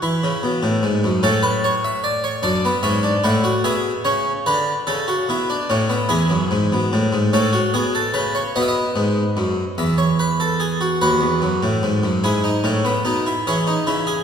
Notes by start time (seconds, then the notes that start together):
0.02 E3 E4
0.24 C#3
0.43 B2
0.63 A2
0.83 G#2
1.04 F#2
1.23 A2 C#4 A4
1.43 B4
1.64 C#5
1.85 E5
2.04 D5
2.24 C#5
2.43 F#2 D4 D5
2.65 B3
2.83 G#2 C#4 E5
3.03 D4
3.24 A2 E4 F#5
3.44 F#4
3.64 B2 G#4 E5
4.05 C#3 C#5
4.46 D3 B4
4.87 C#3 A4
5.08 F#4
5.29 B2 E4
5.50 D4
5.70 A2 C#4
5.89 B3
6.09 E2 E4 G#4
6.30 F#2
6.51 G#2
6.72 B2
6.93 A2
7.13 G#2
7.33 A2 C#4 A4
7.53 F#4
7.74 B2 G#4
7.95 A4
8.14 C#3 B4
8.35 C#5
8.56 B2 B3 D#5
8.62 E5
8.68 D#5
8.96 G#2
9.37 F#2
9.78 E2 E5
9.98 C#5
10.19 B4
10.40 A4
10.60 G#4
10.81 F#4
11.01 D#2 F#4 B4
11.21 E2
11.42 F#2
11.63 A2
11.83 G#2
12.03 F#2
12.24 G#2 E4 G#4
12.44 D#4
12.64 A2 C#4
12.85 B3
13.05 B2 D#4
13.27 E4
13.47 E3 C#4 G#4
13.67 D#4
13.87 C#3 E4
14.07 G#4